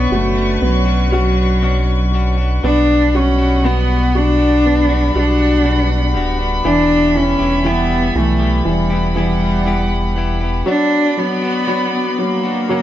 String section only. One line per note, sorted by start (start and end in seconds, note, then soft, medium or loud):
0.00 2.60 B4 medium
0.00 2.60 C#5 soft
0.00 2.59 C#6 medium
2.63 10.63 G3 medium
2.63 4.63 F#5 medium
2.63 10.63 B5 medium
4.65 6.63 F#5 medium
6.64 8.63 E5 medium
8.66 10.65 F#5 medium
10.67 12.68 F#4 medium
10.67 12.68 D5 medium
10.67 12.68 B5 medium
12.72 12.82 F#4 medium
12.72 12.82 C#5 medium
12.72 12.82 A#5 medium